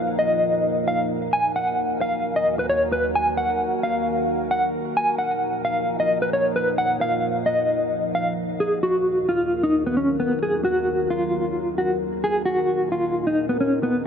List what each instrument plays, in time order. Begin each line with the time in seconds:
Already playing: ambient pad A#2 F3 D#4 A#4, clean electric guitar F5
0.19 clean electric guitar D#5
0.88 clean electric guitar F5
1.33 ambient pad D#2 D#3 F#4, clean electric guitar G#5
1.56 clean electric guitar F#5
2.01 clean electric guitar F5
2.36 clean electric guitar D#5
2.59 clean electric guitar B4
2.69 clean electric guitar C#5
2.92 clean electric guitar B4
3.15 clean electric guitar G#5
3.37 clean electric guitar F#5
3.83 clean electric guitar F5
4.51 clean electric guitar F#5
4.97 ambient pad A#2 F3 D#4, clean electric guitar G#5
5.18 clean electric guitar F#5
5.65 clean electric guitar F5
6.00 clean electric guitar D#5
6.22 clean electric guitar B4
6.33 clean electric guitar C#5
6.56 clean electric guitar B4
6.78 clean electric guitar F#5
7.01 clean electric guitar F5
7.46 clean electric guitar D#5
8.15 clean electric guitar F5
8.60 ambient pad D#2 D#3 F#3 A#4, clean electric guitar G#4
8.83 clean electric guitar F#4
9.29 clean electric guitar F4
9.63 clean electric guitar D#4
9.87 clean electric guitar B3
9.97 clean electric guitar C#4
10.20 clean electric guitar B3
10.43 clean electric guitar G#4
10.65 clean electric guitar F#4
11.10 clean electric guitar F4
11.78 clean electric guitar F#4
12.24 ambient pad A#2 D#3 D#4 A#4, clean electric guitar G#4
12.46 clean electric guitar F#4
12.92 clean electric guitar F4
13.27 clean electric guitar D#4
13.49 clean electric guitar B3
13.61 clean electric guitar C#4
13.83 clean electric guitar B3